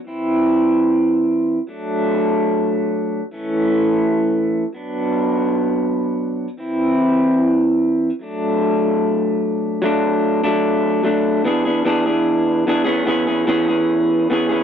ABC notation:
X:1
M:4/4
L:1/8
Q:1/4=147
K:Dlyd
V:1 name="Clean electric guitar"
[E,=CE]8 | [F,A,D]8 | [E,A,C]6- [E,A,C] [F,B,D]- | [F,B,D]8 |
[E,=CE]8 | [F,A,D]8 | [F,A,D]3 [F,A,D]3 [F,A,D]2 | [E,B,DG] [B,DG] [E,B,DG] [B,DG]3 [E,B,DG] [E,B,CG] |
[E,B,CG] [B,CG] [E,B,CG] [B,CG]3 [E,B,CG] [B,CG] |]